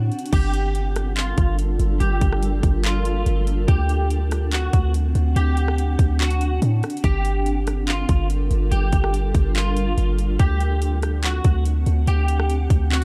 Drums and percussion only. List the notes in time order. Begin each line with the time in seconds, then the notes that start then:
0.12 closed hi-hat
0.19 closed hi-hat
0.26 closed hi-hat
0.33 kick, closed hi-hat, crash
0.54 closed hi-hat
0.75 closed hi-hat
0.96 cross-stick, closed hi-hat
1.16 clap, closed hi-hat
1.38 kick, closed hi-hat
1.59 closed hi-hat
1.79 closed hi-hat
2.00 closed hi-hat
2.21 kick, closed hi-hat
2.32 cross-stick
2.43 closed hi-hat
2.63 kick, closed hi-hat
2.84 clap, closed hi-hat
3.05 closed hi-hat
3.26 closed hi-hat
3.47 closed hi-hat
3.68 kick, closed hi-hat
3.89 closed hi-hat
4.10 closed hi-hat
4.31 cross-stick, closed hi-hat
4.52 clap, closed hi-hat
4.73 kick, closed hi-hat
4.94 closed hi-hat
5.15 closed hi-hat
5.36 closed hi-hat
5.57 closed hi-hat
5.68 cross-stick
5.78 closed hi-hat
5.99 kick, closed hi-hat
6.20 clap, closed hi-hat
6.30 closed hi-hat
6.41 closed hi-hat
6.62 closed hi-hat
6.83 cross-stick, closed hi-hat
6.90 closed hi-hat
6.97 closed hi-hat
7.04 kick, closed hi-hat
7.25 closed hi-hat
7.46 closed hi-hat
7.67 cross-stick, closed hi-hat
7.87 clap, closed hi-hat
8.09 kick, closed hi-hat
8.30 closed hi-hat
8.51 closed hi-hat
8.72 closed hi-hat
8.92 kick, closed hi-hat
9.04 cross-stick
9.14 closed hi-hat
9.35 kick, closed hi-hat
9.55 clap, closed hi-hat
9.77 closed hi-hat
9.98 closed hi-hat
10.19 closed hi-hat
10.39 kick, closed hi-hat
10.60 closed hi-hat
10.82 closed hi-hat
11.02 cross-stick, closed hi-hat
11.23 clap, closed hi-hat
11.44 kick, closed hi-hat
11.65 closed hi-hat
11.86 closed hi-hat
12.07 closed hi-hat
12.28 closed hi-hat
12.40 cross-stick
12.50 closed hi-hat
12.70 kick, closed hi-hat
12.91 clap, closed hi-hat